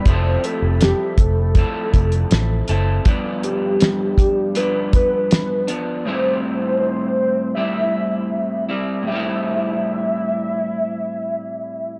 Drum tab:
HH |x-x-x-x-x-xxx-x-|x-x-x-x-x-x-x-x-|----------------|----------------|
SD |----o-------o---|----o-------o---|----------------|----------------|
BD |o-----o-o-o-----|o-----o---o-----|----------------|----------------|